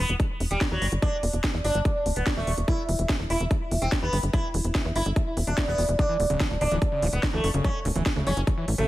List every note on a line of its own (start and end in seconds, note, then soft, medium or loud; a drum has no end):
0.00 0.13 B3 medium
0.09 0.16 E1 medium
0.09 closed hi-hat medium
0.20 kick loud
0.20 closed hi-hat medium
0.40 0.47 E1 medium
0.40 open hi-hat loud
0.51 0.58 E1 medium
0.51 0.60 G3 medium
0.51 closed hi-hat medium
0.61 kick loud
0.61 snare loud
0.61 closed hi-hat medium
0.71 0.78 E2 medium
0.71 0.85 F#3 medium
0.82 0.89 G1 medium
0.82 open hi-hat medium
0.92 0.99 G1 medium
0.92 closed hi-hat medium
1.02 1.16 D4 loud
1.02 kick loud
1.02 closed hi-hat medium
1.23 1.30 E1 loud
1.23 open hi-hat loud
1.33 1.40 E1 medium
1.33 closed hi-hat medium
1.44 kick loud
1.44 snare loud
1.44 closed hi-hat medium
1.54 1.61 E2 medium
1.64 1.71 G1 medium
1.64 1.78 D4 medium
1.64 open hi-hat medium
1.75 1.82 G1 medium
1.75 closed hi-hat medium
1.85 kick loud
1.85 closed hi-hat medium
2.06 2.13 D1 medium
2.06 open hi-hat loud
2.16 2.23 D1 medium
2.16 2.26 B3 medium
2.16 closed hi-hat medium
2.27 kick loud
2.27 snare loud
2.27 closed hi-hat medium
2.37 2.44 E1 medium
2.37 2.51 A3 medium
2.47 2.54 E1 medium
2.47 open hi-hat loud
2.58 2.65 E1 medium
2.58 closed hi-hat medium
2.68 2.82 E4 loud
2.68 kick loud
2.68 closed hi-hat medium
2.89 2.96 E1 medium
2.89 open hi-hat loud
2.99 3.06 E1 medium
2.99 closed hi-hat medium
3.09 kick loud
3.09 snare loud
3.09 closed hi-hat medium
3.20 3.27 E1 medium
3.30 3.37 E1 medium
3.30 3.44 E4 medium
3.30 open hi-hat loud
3.40 3.47 E1 medium
3.40 closed hi-hat medium
3.51 kick loud
3.51 closed hi-hat medium
3.71 3.78 E1 medium
3.71 open hi-hat loud
3.82 3.89 E1 medium
3.82 3.91 C4 medium
3.82 closed hi-hat medium
3.92 kick loud
3.92 snare loud
3.92 closed hi-hat medium
4.02 4.09 E2 medium
4.02 4.16 B3 loud
4.13 4.20 G1 medium
4.13 open hi-hat loud
4.23 4.30 G1 medium
4.23 closed hi-hat medium
4.33 4.47 E4 loud
4.33 kick loud
4.33 closed hi-hat medium
4.54 4.61 E1 medium
4.54 open hi-hat loud
4.64 4.71 E1 medium
4.64 closed hi-hat medium
4.75 kick loud
4.75 snare loud
4.75 closed hi-hat medium
4.85 4.92 E2 medium
4.96 5.03 G1 medium
4.96 5.10 E4 medium
4.96 open hi-hat loud
5.06 5.13 G1 medium
5.06 closed hi-hat medium
5.16 kick loud
5.16 closed hi-hat medium
5.37 5.44 E1 medium
5.37 open hi-hat loud
5.47 5.54 E1 medium
5.47 5.57 D4 medium
5.47 closed hi-hat medium
5.58 kick loud
5.58 snare loud
5.58 closed hi-hat medium
5.68 5.75 E1 medium
5.68 5.82 B3 medium
5.78 5.85 E1 medium
5.78 open hi-hat loud
5.89 5.96 E1 medium
5.89 closed hi-hat medium
5.99 6.02 D3 medium
5.99 6.13 D4 loud
5.99 kick loud
5.99 closed hi-hat medium
6.09 6.17 E3 medium
6.20 6.27 D1 loud
6.20 open hi-hat loud
6.30 6.37 D1 medium
6.30 6.42 C#3 medium
6.30 closed hi-hat medium
6.40 6.46 F#3 medium
6.40 kick loud
6.40 snare loud
6.40 closed hi-hat medium
6.51 6.58 D1 medium
6.61 6.68 D1 medium
6.61 6.64 D3 medium
6.61 6.75 D4 loud
6.61 open hi-hat medium
6.71 6.78 D1 medium
6.71 6.79 E3 medium
6.71 closed hi-hat medium
6.82 kick loud
6.82 closed hi-hat medium
6.92 7.04 C#3 medium
7.02 7.09 D1 loud
7.02 7.08 F#3 medium
7.02 open hi-hat loud
7.13 7.20 D1 medium
7.13 7.22 B3 medium
7.13 closed hi-hat medium
7.23 7.26 D3 medium
7.23 kick loud
7.23 snare loud
7.23 closed hi-hat medium
7.33 7.40 D2 medium
7.33 7.41 E3 medium
7.33 7.47 A3 medium
7.44 7.51 F#1 medium
7.44 open hi-hat loud
7.54 7.61 F#1 medium
7.54 7.66 C#3 medium
7.54 closed hi-hat medium
7.64 7.70 F#3 medium
7.64 7.78 C#4 loud
7.64 kick loud
7.64 closed hi-hat medium
7.85 7.92 D1 medium
7.85 7.88 D3 medium
7.85 open hi-hat loud
7.96 8.03 D1 medium
7.96 8.03 E3 medium
7.96 closed hi-hat medium
8.06 kick loud
8.06 snare loud
8.06 closed hi-hat medium
8.16 8.23 D2 medium
8.16 8.28 C#3 medium
8.27 8.34 F#1 medium
8.27 8.32 F#3 medium
8.27 8.41 C#4 medium
8.27 open hi-hat medium
8.37 8.44 F#1 medium
8.37 closed hi-hat medium
8.47 8.50 D3 medium
8.47 kick loud
8.47 closed hi-hat medium
8.58 8.65 E3 medium
8.68 8.75 A1 medium
8.68 open hi-hat loud
8.78 8.85 A1 medium
8.78 8.88 C#3 medium
8.78 8.88 A3 medium
8.78 closed hi-hat medium